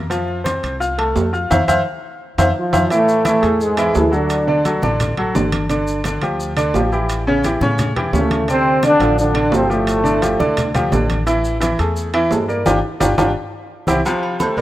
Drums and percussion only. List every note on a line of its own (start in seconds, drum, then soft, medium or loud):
0.11 high conga soft
0.11 high timbale medium
0.11 maracas medium
0.28 high conga soft
0.46 high conga medium
0.46 high timbale medium
0.46 low timbale medium
0.46 maracas medium
0.64 high conga soft
0.64 high timbale medium
0.64 maracas soft
0.82 high conga soft
0.82 maracas medium
0.99 high conga soft
0.99 high timbale medium
1.16 high conga soft
1.16 low timbale medium
1.16 maracas medium
1.34 high conga soft
1.34 maracas soft
1.51 high conga loud
1.51 high timbale loud
1.51 maracas loud
1.68 high conga medium
1.68 high timbale medium
1.68 maracas loud
2.38 high conga loud
2.38 high timbale loud
2.38 maracas medium
2.73 high conga medium
2.73 high timbale medium
2.73 maracas medium
2.90 high conga soft
2.90 high timbale medium
2.90 maracas medium
3.09 maracas medium
3.25 high conga medium
3.25 high timbale medium
3.25 low timbale medium
3.25 maracas medium
3.43 high conga soft
3.43 high timbale medium
3.43 maracas soft
3.60 high conga soft
3.60 maracas medium
3.77 high conga soft
3.77 high timbale medium
3.77 maracas medium
3.95 high conga soft
3.95 low timbale medium
3.95 maracas medium
4.12 high conga soft
4.12 maracas soft
4.30 high conga soft
4.30 high timbale medium
4.30 maracas medium
4.48 high conga soft
4.65 high conga medium
4.65 high timbale medium
4.65 low timbale medium
4.65 maracas medium
4.82 high conga medium
4.82 maracas soft
5.00 high conga soft
5.00 low conga medium
5.00 high timbale medium
5.00 maracas medium
5.17 high conga soft
5.17 high timbale medium
5.35 high conga medium
5.35 low timbale medium
5.35 maracas medium
5.52 high conga medium
5.52 high timbale loud
5.52 maracas soft
5.69 high timbale medium
5.69 maracas medium
5.87 maracas medium
6.04 high conga medium
6.04 high timbale medium
6.04 low timbale medium
6.04 maracas medium
6.22 high conga soft
6.22 high timbale medium
6.22 maracas soft
6.40 high conga soft
6.40 maracas medium
6.57 high conga soft
6.57 high timbale medium
6.57 maracas medium
6.74 high conga soft
6.74 low timbale medium
6.74 maracas medium
6.92 high conga soft
6.92 maracas soft
7.09 high conga soft
7.09 high timbale medium
7.09 maracas medium
7.27 high conga soft
7.44 high conga medium
7.44 high timbale medium
7.44 low timbale medium
7.44 maracas medium
7.61 high conga medium
7.61 maracas soft
7.79 high conga soft
7.79 low conga medium
7.79 high timbale medium
7.79 maracas medium
7.96 high conga soft
7.96 low conga medium
7.96 high timbale medium
8.13 high conga medium
8.13 low timbale medium
8.13 maracas medium
8.31 high conga medium
8.31 high timbale medium
8.31 maracas soft
8.48 high timbale medium
8.48 maracas medium
8.66 high conga soft
8.83 high conga medium
8.83 high timbale medium
8.83 low timbale medium
8.83 maracas medium
9.00 high conga soft
9.00 high timbale medium
9.00 maracas soft
9.18 high conga soft
9.18 maracas medium
9.35 high conga soft
9.35 high timbale loud
9.52 high conga soft
9.52 low timbale loud
9.52 maracas medium
9.69 high conga soft
9.69 maracas soft
9.87 high conga soft
9.87 high timbale medium
9.87 maracas medium
10.05 high conga soft
10.05 maracas medium
10.22 high conga medium
10.22 high timbale medium
10.22 low timbale medium
10.22 maracas medium
10.40 high conga medium
10.40 maracas soft
10.57 high conga soft
10.57 low conga medium
10.57 high timbale loud
10.57 maracas medium
10.75 high conga soft
10.75 low conga medium
10.75 high timbale medium
10.75 maracas medium
10.92 high conga medium
10.92 low timbale medium
10.92 maracas medium
11.10 high conga medium
11.10 high timbale medium
11.10 maracas soft
11.27 high conga soft
11.27 high timbale medium
11.27 maracas medium
11.45 high conga soft
11.45 maracas medium
11.62 high conga medium
11.62 high timbale medium
11.62 low timbale medium
11.62 maracas medium
11.79 high conga soft
11.79 high timbale medium
11.79 maracas soft
11.96 high conga soft
11.96 maracas medium
12.14 high conga soft
12.14 high timbale loud
12.31 high conga soft
12.31 low timbale medium
12.31 maracas medium
12.49 high conga soft
12.49 maracas soft
12.66 high conga loud
12.66 high timbale loud
12.66 maracas loud
13.01 high conga loud
13.01 high timbale loud
13.01 maracas loud
13.18 high conga medium
13.18 high timbale loud
13.18 maracas loud
13.87 high conga loud
13.87 high timbale medium
13.87 maracas loud
14.06 low agogo medium
14.06 maracas medium
14.23 high conga soft
14.23 low agogo medium
14.40 high conga loud
14.40 low timbale medium
14.40 low agogo loud
14.40 maracas medium
14.58 high conga soft
14.58 low agogo medium
14.58 maracas soft